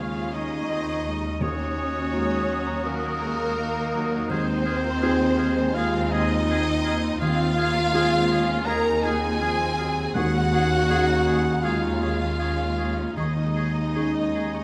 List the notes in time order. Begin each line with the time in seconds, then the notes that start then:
Already playing: D#2 C#3 D#3 G#3 C#4 D#4 F4 G#4 F5 G#5 C#6
0.00 F4
0.16 G#4
0.33 D#4 F4 D#5
0.52 C#4
0.70 C4 D#4
0.88 C#4
1.05 G#3 D#4
1.23 C#4
1.40 D#2 D#3 A#3 C#4 F#4 C#5 D#6
1.59 A#3
1.77 C#4 D#4
1.95 F#4
2.13 G#3 A#3 D#4 F#4 A#4
2.31 D#5
2.49 F#3 F#5
2.66 A#5
2.84 F#3 A#3 A#4 F#5
3.03 A#4
3.21 G#3 F#4
3.39 D#4
3.58 A#3 D#4
3.75 D#4
3.93 F#3 A#3
4.12 D#4
4.29 D#2 D#3 G#3 C4 G#4 C5 F6
4.48 D#4
4.65 A#3 C4 G#4 F6
4.84 F4
5.01 C4 D#4 F4 G#4 F6
5.20 C5
5.36 G#3 G#4 F5 F6
5.57 G#5
5.73 G#3 C4 F4 F5 F6
5.78 G#4
5.93 G#4
6.10 D#4 F4 G#4 D#5 F6
6.31 C4
6.48 C4 D#4 G#4 F6
6.67 C4
6.84 D#4 G#4 F6
7.04 C4
7.20 D#2 D#3 C4 F4 G#4 F5 F6
7.40 D#4
7.57 A#3 C4 G#4 F6
7.76 F4
7.94 G#3 C4 F4 G#4 F6
8.12 C5
8.30 C#4 G#4 F5 F6
8.49 G#5
8.66 D#3 D#4 G#4 A#4 F5 A#5 F6
8.86 G#4
9.03 F4 G#4 G#5 F6
9.23 C4
9.41 F3 C4 D#4 G#4 F6
9.60 C4
9.77 F#3 D#4 G#4 F6
9.97 C4
10.14 D#2 D#3 G#3 C#4 F#4 G#4 F#5 C#6
10.34 C#4
10.51 A#3 D#4 G#4 C#6
10.71 G#4
10.89 C#4 D#4 G#4 C#5 C#6
11.08 D#5
11.26 G#4 G#5 C#6
11.45 C#6
11.63 G#3 D#4 F4 G#4 F5 G#5 C#6
11.82 C#5
12.00 C#4 G#4 C#6
12.19 D#4
12.39 G#3 C#4 G#4 C#6
12.58 D#4
12.77 C#4 G#4 C#6
12.97 D#4
13.16 D#2 D#3 G#3 D#4 G#4 D#5 C#6
13.37 C#4
13.56 D#4 G#4 C#6
13.76 G#4
13.95 C#4 D#4 G#4 C#5 C#6
14.15 D#5
14.34 G#4 G#5 C#6
14.54 C#6